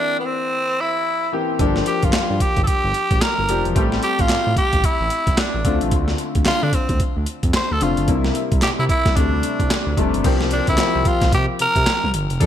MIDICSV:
0, 0, Header, 1, 5, 480
1, 0, Start_track
1, 0, Tempo, 540541
1, 1416, Time_signature, 4, 2, 24, 8
1, 11065, End_track
2, 0, Start_track
2, 0, Title_t, "Tenor saxophone"
2, 0, Program_c, 0, 66
2, 0, Note_on_c, 0, 62, 98
2, 174, Note_off_c, 0, 62, 0
2, 179, Note_on_c, 0, 59, 66
2, 231, Note_on_c, 0, 60, 90
2, 245, Note_off_c, 0, 59, 0
2, 716, Note_on_c, 0, 64, 97
2, 730, Note_off_c, 0, 60, 0
2, 1186, Note_off_c, 0, 64, 0
2, 1667, Note_on_c, 0, 67, 82
2, 1814, Note_on_c, 0, 65, 83
2, 1828, Note_off_c, 0, 67, 0
2, 2141, Note_on_c, 0, 67, 93
2, 2154, Note_off_c, 0, 65, 0
2, 2329, Note_off_c, 0, 67, 0
2, 2341, Note_on_c, 0, 69, 69
2, 2372, Note_on_c, 0, 67, 94
2, 2386, Note_off_c, 0, 69, 0
2, 2858, Note_on_c, 0, 70, 91
2, 2871, Note_off_c, 0, 67, 0
2, 3243, Note_off_c, 0, 70, 0
2, 3584, Note_on_c, 0, 67, 99
2, 3735, Note_on_c, 0, 65, 100
2, 3748, Note_off_c, 0, 67, 0
2, 4059, Note_off_c, 0, 65, 0
2, 4064, Note_on_c, 0, 67, 97
2, 4307, Note_on_c, 0, 64, 87
2, 4320, Note_off_c, 0, 67, 0
2, 4789, Note_on_c, 0, 62, 75
2, 4802, Note_off_c, 0, 64, 0
2, 5168, Note_off_c, 0, 62, 0
2, 5753, Note_on_c, 0, 65, 113
2, 5892, Note_on_c, 0, 62, 95
2, 5905, Note_off_c, 0, 65, 0
2, 5989, Note_on_c, 0, 60, 77
2, 6003, Note_off_c, 0, 62, 0
2, 6223, Note_off_c, 0, 60, 0
2, 6716, Note_on_c, 0, 72, 97
2, 6856, Note_on_c, 0, 69, 93
2, 6869, Note_off_c, 0, 72, 0
2, 6953, Note_on_c, 0, 65, 82
2, 6966, Note_off_c, 0, 69, 0
2, 7185, Note_off_c, 0, 65, 0
2, 7666, Note_on_c, 0, 67, 98
2, 7730, Note_off_c, 0, 67, 0
2, 7811, Note_on_c, 0, 64, 85
2, 7851, Note_off_c, 0, 64, 0
2, 7900, Note_on_c, 0, 64, 101
2, 8137, Note_on_c, 0, 62, 80
2, 8150, Note_off_c, 0, 64, 0
2, 8857, Note_off_c, 0, 62, 0
2, 9350, Note_on_c, 0, 62, 77
2, 9479, Note_off_c, 0, 62, 0
2, 9493, Note_on_c, 0, 64, 92
2, 9832, Note_on_c, 0, 65, 91
2, 9845, Note_off_c, 0, 64, 0
2, 10064, Note_off_c, 0, 65, 0
2, 10076, Note_on_c, 0, 67, 94
2, 10179, Note_off_c, 0, 67, 0
2, 10315, Note_on_c, 0, 70, 117
2, 10753, Note_off_c, 0, 70, 0
2, 11065, End_track
3, 0, Start_track
3, 0, Title_t, "Grand piano"
3, 0, Program_c, 1, 0
3, 0, Control_c, 1, 64, 127
3, 0, Note_on_c, 1, 52, 77
3, 0, Note_on_c, 1, 58, 72
3, 0, Note_on_c, 1, 60, 67
3, 0, Note_on_c, 1, 67, 82
3, 275, Note_off_c, 1, 52, 0
3, 277, Note_off_c, 1, 58, 0
3, 280, Note_off_c, 1, 60, 0
3, 280, Note_off_c, 1, 67, 0
3, 1173, Note_on_c, 1, 52, 74
3, 1176, Note_on_c, 1, 58, 64
3, 1182, Note_on_c, 1, 60, 65
3, 1184, Note_on_c, 1, 67, 86
3, 1377, Note_off_c, 1, 52, 0
3, 1379, Note_off_c, 1, 58, 0
3, 1382, Note_off_c, 1, 60, 0
3, 1383, Note_off_c, 1, 67, 0
3, 1416, Note_on_c, 1, 53, 85
3, 1421, Note_on_c, 1, 58, 82
3, 1424, Note_on_c, 1, 62, 82
3, 1426, Control_c, 1, 64, 0
3, 1428, Note_on_c, 1, 67, 94
3, 1581, Control_c, 1, 64, 127
3, 2196, Note_off_c, 1, 53, 0
3, 2199, Note_off_c, 1, 58, 0
3, 2200, Note_off_c, 1, 62, 0
3, 2203, Note_off_c, 1, 67, 0
3, 3095, Note_on_c, 1, 53, 79
3, 3097, Note_on_c, 1, 58, 65
3, 3100, Note_on_c, 1, 62, 66
3, 3104, Note_on_c, 1, 67, 84
3, 3298, Note_off_c, 1, 53, 0
3, 3299, Note_off_c, 1, 58, 0
3, 3301, Note_off_c, 1, 62, 0
3, 3303, Note_off_c, 1, 67, 0
3, 3332, Note_on_c, 1, 55, 91
3, 3337, Note_on_c, 1, 57, 82
3, 3339, Note_on_c, 1, 60, 80
3, 3343, Note_on_c, 1, 67, 99
3, 3347, Control_c, 1, 64, 0
3, 3479, Control_c, 1, 64, 127
3, 4115, Note_off_c, 1, 55, 0
3, 4117, Note_off_c, 1, 57, 0
3, 4118, Note_off_c, 1, 60, 0
3, 4120, Note_off_c, 1, 67, 0
3, 5012, Note_on_c, 1, 50, 84
3, 5014, Note_on_c, 1, 57, 67
3, 5017, Note_on_c, 1, 60, 68
3, 5022, Note_on_c, 1, 65, 86
3, 5029, Control_c, 1, 64, 0
3, 5176, Control_c, 1, 64, 127
3, 5794, Note_off_c, 1, 50, 0
3, 5795, Note_off_c, 1, 57, 0
3, 5797, Note_off_c, 1, 60, 0
3, 5799, Note_off_c, 1, 65, 0
3, 6934, Note_on_c, 1, 50, 76
3, 6938, Note_on_c, 1, 57, 69
3, 6942, Note_on_c, 1, 60, 63
3, 6945, Note_on_c, 1, 65, 81
3, 7138, Note_off_c, 1, 50, 0
3, 7140, Note_off_c, 1, 57, 0
3, 7142, Note_off_c, 1, 60, 0
3, 7143, Note_off_c, 1, 65, 0
3, 7173, Note_on_c, 1, 48, 75
3, 7176, Note_on_c, 1, 55, 68
3, 7180, Note_on_c, 1, 58, 72
3, 7184, Note_on_c, 1, 64, 81
3, 7189, Control_c, 1, 64, 0
3, 7325, Control_c, 1, 64, 127
3, 7955, Note_off_c, 1, 48, 0
3, 7956, Note_off_c, 1, 55, 0
3, 7959, Note_off_c, 1, 58, 0
3, 7960, Note_off_c, 1, 64, 0
3, 8132, Note_on_c, 1, 48, 77
3, 8138, Note_on_c, 1, 55, 70
3, 8141, Note_on_c, 1, 57, 67
3, 8143, Note_on_c, 1, 62, 77
3, 8146, Control_c, 1, 64, 0
3, 8292, Control_c, 1, 64, 127
3, 8732, Note_off_c, 1, 48, 0
3, 8735, Note_off_c, 1, 55, 0
3, 8737, Note_off_c, 1, 57, 0
3, 8738, Note_off_c, 1, 62, 0
3, 8851, Note_on_c, 1, 48, 88
3, 8855, Note_on_c, 1, 55, 80
3, 8859, Note_on_c, 1, 57, 78
3, 8863, Note_on_c, 1, 62, 90
3, 9056, Note_off_c, 1, 48, 0
3, 9058, Note_off_c, 1, 55, 0
3, 9060, Note_off_c, 1, 57, 0
3, 9062, Note_off_c, 1, 62, 0
3, 9092, Note_on_c, 1, 53, 92
3, 9094, Note_on_c, 1, 58, 81
3, 9098, Note_on_c, 1, 60, 82
3, 9102, Note_on_c, 1, 67, 98
3, 9109, Control_c, 1, 64, 0
3, 9282, Control_c, 1, 64, 127
3, 9499, Note_off_c, 1, 53, 0
3, 9500, Note_off_c, 1, 58, 0
3, 9502, Note_off_c, 1, 60, 0
3, 9504, Note_off_c, 1, 67, 0
3, 9573, Note_on_c, 1, 53, 68
3, 9577, Note_on_c, 1, 58, 71
3, 9581, Note_on_c, 1, 60, 66
3, 9583, Note_on_c, 1, 67, 80
3, 10355, Note_off_c, 1, 53, 0
3, 10357, Note_off_c, 1, 58, 0
3, 10359, Note_off_c, 1, 60, 0
3, 10360, Note_off_c, 1, 67, 0
3, 11012, Note_on_c, 1, 53, 90
3, 11015, Note_on_c, 1, 58, 78
3, 11019, Note_on_c, 1, 62, 83
3, 11023, Note_on_c, 1, 69, 106
3, 11027, Control_c, 1, 64, 0
3, 11065, Note_off_c, 1, 53, 0
3, 11065, Note_off_c, 1, 58, 0
3, 11065, Note_off_c, 1, 62, 0
3, 11065, Note_off_c, 1, 69, 0
3, 11065, End_track
4, 0, Start_track
4, 0, Title_t, "Analog synth bass"
4, 0, Program_c, 2, 38
4, 1418, Note_on_c, 2, 31, 101
4, 1618, Note_off_c, 2, 31, 0
4, 1805, Note_on_c, 2, 31, 82
4, 1882, Note_off_c, 2, 31, 0
4, 1898, Note_on_c, 2, 43, 46
4, 1956, Note_off_c, 2, 43, 0
4, 2043, Note_on_c, 2, 43, 98
4, 2121, Note_off_c, 2, 43, 0
4, 2283, Note_on_c, 2, 31, 82
4, 2361, Note_off_c, 2, 31, 0
4, 2523, Note_on_c, 2, 31, 90
4, 2601, Note_off_c, 2, 31, 0
4, 2761, Note_on_c, 2, 34, 82
4, 2840, Note_off_c, 2, 34, 0
4, 3005, Note_on_c, 2, 31, 88
4, 3083, Note_off_c, 2, 31, 0
4, 3101, Note_on_c, 2, 29, 87
4, 3221, Note_off_c, 2, 29, 0
4, 3248, Note_on_c, 2, 28, 93
4, 3324, Note_off_c, 2, 28, 0
4, 3338, Note_on_c, 2, 33, 108
4, 3538, Note_off_c, 2, 33, 0
4, 3726, Note_on_c, 2, 33, 83
4, 3803, Note_off_c, 2, 33, 0
4, 3823, Note_on_c, 2, 45, 46
4, 3880, Note_off_c, 2, 45, 0
4, 3967, Note_on_c, 2, 45, 97
4, 4044, Note_off_c, 2, 45, 0
4, 4201, Note_on_c, 2, 33, 86
4, 4281, Note_off_c, 2, 33, 0
4, 4445, Note_on_c, 2, 33, 98
4, 4522, Note_off_c, 2, 33, 0
4, 4681, Note_on_c, 2, 36, 97
4, 4760, Note_off_c, 2, 36, 0
4, 4923, Note_on_c, 2, 33, 91
4, 5001, Note_off_c, 2, 33, 0
4, 5016, Note_on_c, 2, 38, 87
4, 5138, Note_off_c, 2, 38, 0
4, 5166, Note_on_c, 2, 33, 76
4, 5243, Note_off_c, 2, 33, 0
4, 5255, Note_on_c, 2, 38, 113
4, 5456, Note_off_c, 2, 38, 0
4, 5644, Note_on_c, 2, 38, 92
4, 5722, Note_off_c, 2, 38, 0
4, 5739, Note_on_c, 2, 50, 50
4, 5796, Note_off_c, 2, 50, 0
4, 5885, Note_on_c, 2, 50, 105
4, 5963, Note_off_c, 2, 50, 0
4, 6123, Note_on_c, 2, 38, 81
4, 6202, Note_off_c, 2, 38, 0
4, 6363, Note_on_c, 2, 38, 86
4, 6442, Note_off_c, 2, 38, 0
4, 6602, Note_on_c, 2, 41, 92
4, 6681, Note_off_c, 2, 41, 0
4, 6849, Note_on_c, 2, 38, 80
4, 6925, Note_off_c, 2, 38, 0
4, 6941, Note_on_c, 2, 29, 89
4, 7061, Note_off_c, 2, 29, 0
4, 7086, Note_on_c, 2, 31, 93
4, 7163, Note_off_c, 2, 31, 0
4, 7176, Note_on_c, 2, 36, 110
4, 7377, Note_off_c, 2, 36, 0
4, 7566, Note_on_c, 2, 36, 92
4, 7643, Note_off_c, 2, 36, 0
4, 7661, Note_on_c, 2, 48, 48
4, 7718, Note_off_c, 2, 48, 0
4, 7806, Note_on_c, 2, 48, 109
4, 7883, Note_off_c, 2, 48, 0
4, 8043, Note_on_c, 2, 36, 86
4, 8122, Note_off_c, 2, 36, 0
4, 8139, Note_on_c, 2, 38, 95
4, 8259, Note_off_c, 2, 38, 0
4, 8285, Note_on_c, 2, 38, 88
4, 8363, Note_off_c, 2, 38, 0
4, 8522, Note_on_c, 2, 36, 91
4, 8601, Note_off_c, 2, 36, 0
4, 8762, Note_on_c, 2, 38, 90
4, 8841, Note_off_c, 2, 38, 0
4, 8858, Note_on_c, 2, 29, 82
4, 8979, Note_off_c, 2, 29, 0
4, 9004, Note_on_c, 2, 31, 84
4, 9082, Note_off_c, 2, 31, 0
4, 9097, Note_on_c, 2, 36, 115
4, 9419, Note_off_c, 2, 36, 0
4, 9485, Note_on_c, 2, 38, 83
4, 9563, Note_off_c, 2, 38, 0
4, 9582, Note_on_c, 2, 36, 44
4, 9639, Note_off_c, 2, 36, 0
4, 9727, Note_on_c, 2, 36, 104
4, 9804, Note_off_c, 2, 36, 0
4, 9962, Note_on_c, 2, 36, 93
4, 10041, Note_off_c, 2, 36, 0
4, 10058, Note_on_c, 2, 48, 98
4, 10179, Note_off_c, 2, 48, 0
4, 10301, Note_on_c, 2, 48, 45
4, 10358, Note_off_c, 2, 48, 0
4, 10443, Note_on_c, 2, 48, 92
4, 10521, Note_off_c, 2, 48, 0
4, 10690, Note_on_c, 2, 36, 85
4, 10765, Note_off_c, 2, 36, 0
4, 10783, Note_on_c, 2, 31, 89
4, 10902, Note_off_c, 2, 31, 0
4, 10928, Note_on_c, 2, 29, 88
4, 11005, Note_off_c, 2, 29, 0
4, 11018, Note_on_c, 2, 34, 108
4, 11065, Note_off_c, 2, 34, 0
4, 11065, End_track
5, 0, Start_track
5, 0, Title_t, "Drums"
5, 1415, Note_on_c, 9, 42, 70
5, 1416, Note_on_c, 9, 36, 91
5, 1503, Note_off_c, 9, 42, 0
5, 1505, Note_off_c, 9, 36, 0
5, 1561, Note_on_c, 9, 38, 60
5, 1650, Note_off_c, 9, 38, 0
5, 1652, Note_on_c, 9, 42, 63
5, 1740, Note_off_c, 9, 42, 0
5, 1798, Note_on_c, 9, 42, 49
5, 1804, Note_on_c, 9, 36, 88
5, 1887, Note_off_c, 9, 42, 0
5, 1891, Note_on_c, 9, 38, 97
5, 1892, Note_off_c, 9, 36, 0
5, 1892, Note_on_c, 9, 42, 73
5, 1893, Note_on_c, 9, 39, 77
5, 1980, Note_off_c, 9, 38, 0
5, 1981, Note_off_c, 9, 42, 0
5, 1982, Note_off_c, 9, 39, 0
5, 2134, Note_on_c, 9, 36, 84
5, 2135, Note_on_c, 9, 42, 70
5, 2223, Note_off_c, 9, 36, 0
5, 2224, Note_off_c, 9, 42, 0
5, 2277, Note_on_c, 9, 42, 45
5, 2280, Note_on_c, 9, 36, 89
5, 2366, Note_off_c, 9, 42, 0
5, 2369, Note_off_c, 9, 36, 0
5, 2374, Note_on_c, 9, 42, 78
5, 2375, Note_on_c, 9, 36, 82
5, 2462, Note_off_c, 9, 42, 0
5, 2464, Note_off_c, 9, 36, 0
5, 2613, Note_on_c, 9, 42, 69
5, 2702, Note_off_c, 9, 42, 0
5, 2759, Note_on_c, 9, 42, 47
5, 2760, Note_on_c, 9, 36, 91
5, 2848, Note_off_c, 9, 42, 0
5, 2849, Note_off_c, 9, 36, 0
5, 2854, Note_on_c, 9, 42, 75
5, 2857, Note_on_c, 9, 38, 117
5, 2859, Note_on_c, 9, 39, 87
5, 2943, Note_off_c, 9, 42, 0
5, 2946, Note_off_c, 9, 38, 0
5, 2948, Note_off_c, 9, 39, 0
5, 3096, Note_on_c, 9, 42, 78
5, 3185, Note_off_c, 9, 42, 0
5, 3244, Note_on_c, 9, 42, 50
5, 3333, Note_off_c, 9, 42, 0
5, 3336, Note_on_c, 9, 36, 98
5, 3337, Note_on_c, 9, 42, 68
5, 3425, Note_off_c, 9, 36, 0
5, 3426, Note_off_c, 9, 42, 0
5, 3484, Note_on_c, 9, 38, 59
5, 3572, Note_off_c, 9, 38, 0
5, 3575, Note_on_c, 9, 42, 59
5, 3663, Note_off_c, 9, 42, 0
5, 3719, Note_on_c, 9, 42, 48
5, 3724, Note_on_c, 9, 36, 88
5, 3808, Note_off_c, 9, 42, 0
5, 3812, Note_on_c, 9, 38, 95
5, 3813, Note_off_c, 9, 36, 0
5, 3813, Note_on_c, 9, 42, 69
5, 3814, Note_on_c, 9, 39, 84
5, 3901, Note_off_c, 9, 38, 0
5, 3902, Note_off_c, 9, 42, 0
5, 3903, Note_off_c, 9, 39, 0
5, 4054, Note_on_c, 9, 36, 87
5, 4055, Note_on_c, 9, 42, 68
5, 4143, Note_off_c, 9, 36, 0
5, 4144, Note_off_c, 9, 42, 0
5, 4197, Note_on_c, 9, 42, 49
5, 4200, Note_on_c, 9, 36, 97
5, 4286, Note_off_c, 9, 42, 0
5, 4289, Note_off_c, 9, 36, 0
5, 4295, Note_on_c, 9, 36, 84
5, 4295, Note_on_c, 9, 42, 76
5, 4384, Note_off_c, 9, 36, 0
5, 4384, Note_off_c, 9, 42, 0
5, 4531, Note_on_c, 9, 42, 77
5, 4620, Note_off_c, 9, 42, 0
5, 4679, Note_on_c, 9, 42, 52
5, 4680, Note_on_c, 9, 36, 96
5, 4768, Note_off_c, 9, 36, 0
5, 4768, Note_off_c, 9, 42, 0
5, 4771, Note_on_c, 9, 42, 76
5, 4774, Note_on_c, 9, 38, 116
5, 4776, Note_on_c, 9, 39, 87
5, 4860, Note_off_c, 9, 42, 0
5, 4863, Note_off_c, 9, 38, 0
5, 4865, Note_off_c, 9, 39, 0
5, 5014, Note_on_c, 9, 36, 89
5, 5014, Note_on_c, 9, 42, 73
5, 5103, Note_off_c, 9, 36, 0
5, 5103, Note_off_c, 9, 42, 0
5, 5160, Note_on_c, 9, 42, 50
5, 5249, Note_off_c, 9, 42, 0
5, 5252, Note_on_c, 9, 42, 67
5, 5254, Note_on_c, 9, 36, 102
5, 5341, Note_off_c, 9, 42, 0
5, 5343, Note_off_c, 9, 36, 0
5, 5397, Note_on_c, 9, 38, 61
5, 5486, Note_off_c, 9, 38, 0
5, 5490, Note_on_c, 9, 42, 60
5, 5579, Note_off_c, 9, 42, 0
5, 5638, Note_on_c, 9, 42, 47
5, 5643, Note_on_c, 9, 36, 88
5, 5727, Note_off_c, 9, 42, 0
5, 5732, Note_off_c, 9, 36, 0
5, 5732, Note_on_c, 9, 38, 101
5, 5733, Note_on_c, 9, 42, 70
5, 5734, Note_on_c, 9, 39, 86
5, 5821, Note_off_c, 9, 38, 0
5, 5822, Note_off_c, 9, 42, 0
5, 5823, Note_off_c, 9, 39, 0
5, 5974, Note_on_c, 9, 36, 89
5, 5974, Note_on_c, 9, 42, 70
5, 6063, Note_off_c, 9, 36, 0
5, 6063, Note_off_c, 9, 42, 0
5, 6118, Note_on_c, 9, 42, 46
5, 6120, Note_on_c, 9, 36, 93
5, 6206, Note_off_c, 9, 42, 0
5, 6209, Note_off_c, 9, 36, 0
5, 6213, Note_on_c, 9, 42, 73
5, 6215, Note_on_c, 9, 36, 86
5, 6302, Note_off_c, 9, 42, 0
5, 6304, Note_off_c, 9, 36, 0
5, 6451, Note_on_c, 9, 42, 74
5, 6539, Note_off_c, 9, 42, 0
5, 6598, Note_on_c, 9, 42, 50
5, 6600, Note_on_c, 9, 36, 91
5, 6687, Note_off_c, 9, 42, 0
5, 6688, Note_off_c, 9, 36, 0
5, 6690, Note_on_c, 9, 42, 71
5, 6693, Note_on_c, 9, 38, 117
5, 6695, Note_on_c, 9, 39, 90
5, 6779, Note_off_c, 9, 42, 0
5, 6782, Note_off_c, 9, 38, 0
5, 6784, Note_off_c, 9, 39, 0
5, 6933, Note_on_c, 9, 42, 77
5, 7022, Note_off_c, 9, 42, 0
5, 7080, Note_on_c, 9, 42, 50
5, 7168, Note_off_c, 9, 42, 0
5, 7173, Note_on_c, 9, 42, 69
5, 7175, Note_on_c, 9, 36, 96
5, 7262, Note_off_c, 9, 42, 0
5, 7264, Note_off_c, 9, 36, 0
5, 7322, Note_on_c, 9, 38, 66
5, 7410, Note_off_c, 9, 38, 0
5, 7414, Note_on_c, 9, 42, 63
5, 7503, Note_off_c, 9, 42, 0
5, 7562, Note_on_c, 9, 42, 48
5, 7565, Note_on_c, 9, 36, 93
5, 7651, Note_off_c, 9, 42, 0
5, 7654, Note_off_c, 9, 36, 0
5, 7654, Note_on_c, 9, 38, 101
5, 7655, Note_on_c, 9, 42, 70
5, 7657, Note_on_c, 9, 39, 87
5, 7743, Note_off_c, 9, 38, 0
5, 7744, Note_off_c, 9, 42, 0
5, 7745, Note_off_c, 9, 39, 0
5, 7896, Note_on_c, 9, 36, 95
5, 7899, Note_on_c, 9, 42, 72
5, 7985, Note_off_c, 9, 36, 0
5, 7987, Note_off_c, 9, 42, 0
5, 8041, Note_on_c, 9, 42, 45
5, 8042, Note_on_c, 9, 36, 91
5, 8044, Note_on_c, 9, 38, 63
5, 8130, Note_off_c, 9, 42, 0
5, 8131, Note_off_c, 9, 36, 0
5, 8133, Note_off_c, 9, 38, 0
5, 8137, Note_on_c, 9, 36, 85
5, 8139, Note_on_c, 9, 42, 73
5, 8226, Note_off_c, 9, 36, 0
5, 8228, Note_off_c, 9, 42, 0
5, 8375, Note_on_c, 9, 42, 76
5, 8464, Note_off_c, 9, 42, 0
5, 8521, Note_on_c, 9, 36, 85
5, 8524, Note_on_c, 9, 42, 49
5, 8610, Note_off_c, 9, 36, 0
5, 8612, Note_off_c, 9, 42, 0
5, 8616, Note_on_c, 9, 42, 73
5, 8619, Note_on_c, 9, 38, 107
5, 8621, Note_on_c, 9, 39, 86
5, 8705, Note_off_c, 9, 42, 0
5, 8707, Note_off_c, 9, 38, 0
5, 8709, Note_off_c, 9, 39, 0
5, 8856, Note_on_c, 9, 36, 87
5, 8858, Note_on_c, 9, 42, 74
5, 8945, Note_off_c, 9, 36, 0
5, 8947, Note_off_c, 9, 42, 0
5, 9005, Note_on_c, 9, 42, 51
5, 9094, Note_off_c, 9, 42, 0
5, 9096, Note_on_c, 9, 36, 98
5, 9096, Note_on_c, 9, 42, 72
5, 9097, Note_on_c, 9, 49, 81
5, 9185, Note_off_c, 9, 36, 0
5, 9185, Note_off_c, 9, 42, 0
5, 9186, Note_off_c, 9, 49, 0
5, 9241, Note_on_c, 9, 38, 65
5, 9330, Note_off_c, 9, 38, 0
5, 9330, Note_on_c, 9, 42, 63
5, 9419, Note_off_c, 9, 42, 0
5, 9477, Note_on_c, 9, 42, 50
5, 9483, Note_on_c, 9, 36, 86
5, 9566, Note_off_c, 9, 42, 0
5, 9570, Note_on_c, 9, 38, 104
5, 9571, Note_on_c, 9, 42, 73
5, 9572, Note_off_c, 9, 36, 0
5, 9572, Note_on_c, 9, 39, 84
5, 9659, Note_off_c, 9, 38, 0
5, 9660, Note_off_c, 9, 42, 0
5, 9661, Note_off_c, 9, 39, 0
5, 9814, Note_on_c, 9, 36, 91
5, 9814, Note_on_c, 9, 42, 74
5, 9903, Note_off_c, 9, 36, 0
5, 9903, Note_off_c, 9, 42, 0
5, 9958, Note_on_c, 9, 42, 50
5, 9961, Note_on_c, 9, 36, 97
5, 9961, Note_on_c, 9, 38, 70
5, 10047, Note_off_c, 9, 42, 0
5, 10049, Note_off_c, 9, 36, 0
5, 10050, Note_off_c, 9, 38, 0
5, 10056, Note_on_c, 9, 36, 89
5, 10057, Note_on_c, 9, 42, 84
5, 10145, Note_off_c, 9, 36, 0
5, 10146, Note_off_c, 9, 42, 0
5, 10294, Note_on_c, 9, 42, 82
5, 10383, Note_off_c, 9, 42, 0
5, 10440, Note_on_c, 9, 36, 91
5, 10440, Note_on_c, 9, 42, 52
5, 10529, Note_off_c, 9, 36, 0
5, 10529, Note_off_c, 9, 42, 0
5, 10534, Note_on_c, 9, 42, 71
5, 10537, Note_on_c, 9, 38, 115
5, 10539, Note_on_c, 9, 39, 95
5, 10623, Note_off_c, 9, 42, 0
5, 10626, Note_off_c, 9, 38, 0
5, 10628, Note_off_c, 9, 39, 0
5, 10778, Note_on_c, 9, 42, 84
5, 10867, Note_off_c, 9, 42, 0
5, 10924, Note_on_c, 9, 42, 52
5, 11013, Note_off_c, 9, 42, 0
5, 11016, Note_on_c, 9, 36, 102
5, 11016, Note_on_c, 9, 42, 73
5, 11065, Note_off_c, 9, 36, 0
5, 11065, Note_off_c, 9, 42, 0
5, 11065, End_track
0, 0, End_of_file